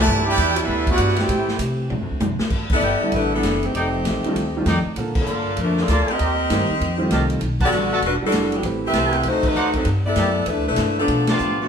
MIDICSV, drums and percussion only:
0, 0, Header, 1, 2, 480
1, 0, Start_track
1, 0, Key_signature, 1, "major"
1, 0, Tempo, 305810
1, 116, Time_signature, 4, 2, 24, 8
1, 18338, End_track
2, 0, Start_track
2, 0, Title_t, "Drums"
2, 587, Note_on_c, 9, 36, 28
2, 591, Note_on_c, 9, 44, 57
2, 591, Note_on_c, 9, 51, 77
2, 744, Note_off_c, 9, 36, 0
2, 748, Note_off_c, 9, 44, 0
2, 748, Note_off_c, 9, 51, 0
2, 880, Note_on_c, 9, 51, 85
2, 1037, Note_off_c, 9, 51, 0
2, 1065, Note_on_c, 9, 36, 27
2, 1222, Note_off_c, 9, 36, 0
2, 1362, Note_on_c, 9, 36, 74
2, 1363, Note_on_c, 9, 51, 56
2, 1519, Note_off_c, 9, 36, 0
2, 1520, Note_off_c, 9, 51, 0
2, 1531, Note_on_c, 9, 44, 64
2, 1531, Note_on_c, 9, 51, 83
2, 1540, Note_on_c, 9, 36, 23
2, 1688, Note_off_c, 9, 44, 0
2, 1688, Note_off_c, 9, 51, 0
2, 1697, Note_off_c, 9, 36, 0
2, 1697, Note_on_c, 9, 38, 33
2, 1826, Note_on_c, 9, 51, 55
2, 1854, Note_off_c, 9, 38, 0
2, 1863, Note_on_c, 9, 38, 56
2, 1983, Note_off_c, 9, 51, 0
2, 2020, Note_off_c, 9, 38, 0
2, 2020, Note_on_c, 9, 51, 72
2, 2021, Note_on_c, 9, 36, 25
2, 2177, Note_off_c, 9, 51, 0
2, 2178, Note_off_c, 9, 36, 0
2, 2326, Note_on_c, 9, 38, 54
2, 2483, Note_off_c, 9, 38, 0
2, 2494, Note_on_c, 9, 44, 67
2, 2494, Note_on_c, 9, 51, 81
2, 2500, Note_on_c, 9, 36, 21
2, 2651, Note_off_c, 9, 44, 0
2, 2651, Note_off_c, 9, 51, 0
2, 2657, Note_off_c, 9, 36, 0
2, 2982, Note_on_c, 9, 47, 59
2, 3139, Note_off_c, 9, 47, 0
2, 3457, Note_on_c, 9, 44, 58
2, 3460, Note_on_c, 9, 47, 89
2, 3614, Note_off_c, 9, 44, 0
2, 3617, Note_off_c, 9, 47, 0
2, 3753, Note_on_c, 9, 38, 83
2, 3910, Note_off_c, 9, 38, 0
2, 3926, Note_on_c, 9, 49, 74
2, 3932, Note_on_c, 9, 36, 72
2, 4083, Note_off_c, 9, 49, 0
2, 4089, Note_off_c, 9, 36, 0
2, 4231, Note_on_c, 9, 49, 77
2, 4237, Note_on_c, 9, 36, 91
2, 4388, Note_off_c, 9, 49, 0
2, 4394, Note_off_c, 9, 36, 0
2, 4400, Note_on_c, 9, 44, 54
2, 4557, Note_off_c, 9, 44, 0
2, 4892, Note_on_c, 9, 51, 61
2, 4898, Note_on_c, 9, 36, 22
2, 5049, Note_off_c, 9, 51, 0
2, 5055, Note_off_c, 9, 36, 0
2, 5385, Note_on_c, 9, 44, 58
2, 5385, Note_on_c, 9, 51, 73
2, 5386, Note_on_c, 9, 36, 21
2, 5388, Note_on_c, 9, 38, 69
2, 5542, Note_off_c, 9, 44, 0
2, 5542, Note_off_c, 9, 51, 0
2, 5543, Note_off_c, 9, 36, 0
2, 5545, Note_off_c, 9, 38, 0
2, 5692, Note_on_c, 9, 51, 46
2, 5849, Note_off_c, 9, 51, 0
2, 5875, Note_on_c, 9, 36, 19
2, 5880, Note_on_c, 9, 51, 61
2, 6032, Note_off_c, 9, 36, 0
2, 6037, Note_off_c, 9, 51, 0
2, 6357, Note_on_c, 9, 44, 52
2, 6357, Note_on_c, 9, 51, 69
2, 6358, Note_on_c, 9, 36, 21
2, 6360, Note_on_c, 9, 38, 67
2, 6514, Note_off_c, 9, 44, 0
2, 6514, Note_off_c, 9, 51, 0
2, 6515, Note_off_c, 9, 36, 0
2, 6517, Note_off_c, 9, 38, 0
2, 6658, Note_on_c, 9, 51, 47
2, 6815, Note_off_c, 9, 51, 0
2, 6837, Note_on_c, 9, 36, 22
2, 6841, Note_on_c, 9, 51, 67
2, 6994, Note_off_c, 9, 36, 0
2, 6998, Note_off_c, 9, 51, 0
2, 7311, Note_on_c, 9, 44, 52
2, 7311, Note_on_c, 9, 51, 67
2, 7313, Note_on_c, 9, 36, 18
2, 7314, Note_on_c, 9, 38, 69
2, 7468, Note_off_c, 9, 44, 0
2, 7468, Note_off_c, 9, 51, 0
2, 7470, Note_off_c, 9, 36, 0
2, 7471, Note_off_c, 9, 38, 0
2, 7784, Note_on_c, 9, 51, 66
2, 7790, Note_on_c, 9, 36, 25
2, 7941, Note_off_c, 9, 51, 0
2, 7947, Note_off_c, 9, 36, 0
2, 8084, Note_on_c, 9, 49, 80
2, 8090, Note_on_c, 9, 36, 90
2, 8241, Note_off_c, 9, 49, 0
2, 8247, Note_off_c, 9, 36, 0
2, 8256, Note_on_c, 9, 44, 60
2, 8413, Note_off_c, 9, 44, 0
2, 8735, Note_on_c, 9, 51, 65
2, 8746, Note_on_c, 9, 36, 25
2, 8892, Note_off_c, 9, 51, 0
2, 8903, Note_off_c, 9, 36, 0
2, 9062, Note_on_c, 9, 38, 44
2, 9219, Note_off_c, 9, 38, 0
2, 9228, Note_on_c, 9, 44, 59
2, 9228, Note_on_c, 9, 51, 69
2, 9230, Note_on_c, 9, 36, 22
2, 9231, Note_on_c, 9, 38, 66
2, 9385, Note_off_c, 9, 44, 0
2, 9385, Note_off_c, 9, 51, 0
2, 9387, Note_off_c, 9, 36, 0
2, 9388, Note_off_c, 9, 38, 0
2, 9543, Note_on_c, 9, 51, 44
2, 9700, Note_off_c, 9, 51, 0
2, 9716, Note_on_c, 9, 51, 66
2, 9717, Note_on_c, 9, 36, 23
2, 9873, Note_off_c, 9, 51, 0
2, 9874, Note_off_c, 9, 36, 0
2, 10201, Note_on_c, 9, 36, 18
2, 10202, Note_on_c, 9, 44, 52
2, 10202, Note_on_c, 9, 51, 74
2, 10205, Note_on_c, 9, 38, 69
2, 10358, Note_off_c, 9, 36, 0
2, 10359, Note_off_c, 9, 44, 0
2, 10359, Note_off_c, 9, 51, 0
2, 10362, Note_off_c, 9, 38, 0
2, 10680, Note_on_c, 9, 36, 21
2, 10692, Note_on_c, 9, 51, 61
2, 10837, Note_off_c, 9, 36, 0
2, 10849, Note_off_c, 9, 51, 0
2, 11152, Note_on_c, 9, 44, 48
2, 11152, Note_on_c, 9, 51, 66
2, 11155, Note_on_c, 9, 36, 22
2, 11155, Note_on_c, 9, 38, 68
2, 11309, Note_off_c, 9, 44, 0
2, 11309, Note_off_c, 9, 51, 0
2, 11311, Note_off_c, 9, 36, 0
2, 11312, Note_off_c, 9, 38, 0
2, 11452, Note_on_c, 9, 51, 48
2, 11609, Note_off_c, 9, 51, 0
2, 11626, Note_on_c, 9, 51, 62
2, 11633, Note_on_c, 9, 36, 20
2, 11783, Note_off_c, 9, 51, 0
2, 11790, Note_off_c, 9, 36, 0
2, 11934, Note_on_c, 9, 36, 89
2, 11935, Note_on_c, 9, 49, 78
2, 12091, Note_off_c, 9, 36, 0
2, 12092, Note_off_c, 9, 49, 0
2, 12115, Note_on_c, 9, 44, 50
2, 12272, Note_off_c, 9, 44, 0
2, 12592, Note_on_c, 9, 36, 26
2, 12593, Note_on_c, 9, 51, 61
2, 12749, Note_off_c, 9, 36, 0
2, 12750, Note_off_c, 9, 51, 0
2, 13059, Note_on_c, 9, 44, 62
2, 13059, Note_on_c, 9, 51, 68
2, 13062, Note_on_c, 9, 38, 70
2, 13065, Note_on_c, 9, 36, 23
2, 13216, Note_off_c, 9, 44, 0
2, 13216, Note_off_c, 9, 51, 0
2, 13219, Note_off_c, 9, 38, 0
2, 13222, Note_off_c, 9, 36, 0
2, 13371, Note_on_c, 9, 51, 48
2, 13528, Note_off_c, 9, 51, 0
2, 13546, Note_on_c, 9, 36, 21
2, 13547, Note_on_c, 9, 51, 63
2, 13703, Note_off_c, 9, 36, 0
2, 13704, Note_off_c, 9, 51, 0
2, 14023, Note_on_c, 9, 36, 20
2, 14023, Note_on_c, 9, 44, 52
2, 14023, Note_on_c, 9, 51, 63
2, 14026, Note_on_c, 9, 38, 68
2, 14180, Note_off_c, 9, 36, 0
2, 14180, Note_off_c, 9, 44, 0
2, 14180, Note_off_c, 9, 51, 0
2, 14183, Note_off_c, 9, 38, 0
2, 14322, Note_on_c, 9, 51, 47
2, 14479, Note_off_c, 9, 51, 0
2, 14490, Note_on_c, 9, 51, 63
2, 14503, Note_on_c, 9, 36, 21
2, 14647, Note_off_c, 9, 51, 0
2, 14660, Note_off_c, 9, 36, 0
2, 14801, Note_on_c, 9, 49, 79
2, 14804, Note_on_c, 9, 36, 89
2, 14958, Note_off_c, 9, 49, 0
2, 14961, Note_off_c, 9, 36, 0
2, 14987, Note_on_c, 9, 44, 53
2, 15144, Note_off_c, 9, 44, 0
2, 15277, Note_on_c, 9, 51, 49
2, 15284, Note_on_c, 9, 36, 57
2, 15434, Note_off_c, 9, 51, 0
2, 15441, Note_off_c, 9, 36, 0
2, 15456, Note_on_c, 9, 51, 67
2, 15460, Note_on_c, 9, 36, 23
2, 15613, Note_off_c, 9, 51, 0
2, 15617, Note_off_c, 9, 36, 0
2, 15941, Note_on_c, 9, 44, 59
2, 15941, Note_on_c, 9, 51, 67
2, 15944, Note_on_c, 9, 36, 23
2, 15944, Note_on_c, 9, 38, 75
2, 16098, Note_off_c, 9, 44, 0
2, 16098, Note_off_c, 9, 51, 0
2, 16101, Note_off_c, 9, 36, 0
2, 16101, Note_off_c, 9, 38, 0
2, 16415, Note_on_c, 9, 51, 64
2, 16423, Note_on_c, 9, 36, 22
2, 16572, Note_off_c, 9, 51, 0
2, 16580, Note_off_c, 9, 36, 0
2, 16890, Note_on_c, 9, 44, 55
2, 16890, Note_on_c, 9, 51, 70
2, 16893, Note_on_c, 9, 38, 72
2, 16907, Note_on_c, 9, 36, 21
2, 17047, Note_off_c, 9, 44, 0
2, 17047, Note_off_c, 9, 51, 0
2, 17050, Note_off_c, 9, 38, 0
2, 17064, Note_off_c, 9, 36, 0
2, 17390, Note_on_c, 9, 51, 61
2, 17394, Note_on_c, 9, 36, 24
2, 17547, Note_off_c, 9, 51, 0
2, 17551, Note_off_c, 9, 36, 0
2, 17691, Note_on_c, 9, 51, 68
2, 17695, Note_on_c, 9, 38, 85
2, 17848, Note_off_c, 9, 51, 0
2, 17852, Note_off_c, 9, 38, 0
2, 17866, Note_on_c, 9, 44, 61
2, 18023, Note_off_c, 9, 44, 0
2, 18338, End_track
0, 0, End_of_file